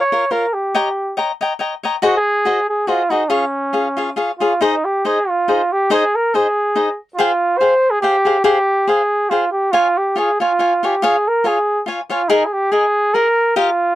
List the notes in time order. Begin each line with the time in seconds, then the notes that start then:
0.00 C#5
0.12 F4 A#4 C#5 F5
0.31 F4 A#4 C#5 F5
0.54 G4
0.74 C#5 D#5 G5 A#5
1.17 C#5 D#5 G5 A#5
1.41 C#5 D#5 G5 A#5
1.59 C#5 D#5 G5 A#5
1.83 C#5 D#5 G5 A#5
2.02 F#4 G#4 C5 D#5
2.17 G#4
2.45 F#4 G#4 C5 D#5
2.69 G#4
2.87 F4 F#4 G#4 C5 D#5
3.10 D#4 F#4 G#4 C5 D#5
3.29 C#4 F4 G#4 C#5 F5
3.73 F4 G#4 C#5 F5
3.97 F4 G#4 C#5 F5
4.16 F4 G#4 C#5 F5
4.38 F4 G#4 C#5 F5
4.61 D#4 G#4 C5 D#5
4.85 G4
5.05 D#4 G#4 C5 D#5
5.29 F4
5.48 D#4 G#4 C5 D#5
5.72 G4
5.90 D#4 G#4 C5 D#5
6.15 A#4
6.34 D#4 G#4 C5 D#5
6.75 D#4 G#4 C5 D#5
7.15 F4 G#4 C5
7.20 F5 G5
7.58 G#4 C5 F5
7.63 G5
7.91 G#4
8.01 G4 G#4 C5 F5 G5
8.25 G#4 C5 F5 G5
8.44 G4 G#4 C5 F5 G5
8.87 G#4 C5 F5 G5
9.30 F4 G#4 C5 F5 G5
9.52 G4
9.72 F4 C#5 F5 G#5
9.97 G4
10.16 F4 G#4 C#5 F5 G#5
10.40 F4 C#5 F5 G#5
10.59 F4 C#5 F5 G#5
10.83 F4 G4 C#5 F5 G#5
11.02 F4 G#4 C#5 F5 G#5
11.28 A#4
11.44 F4 G#4 C#5 F5 G#5
11.86 F4 C#5 F5 G#5
12.10 F4 C#5 F5 G#5
12.29 D#4 G#4 A#4 D#5 G#5
12.46 G#4
12.53 G4
12.72 G#4 A#4 D#5 G#5
13.14 G#4 A#4 D#5 G#5
13.56 F4 G4 A#4 D#5 F5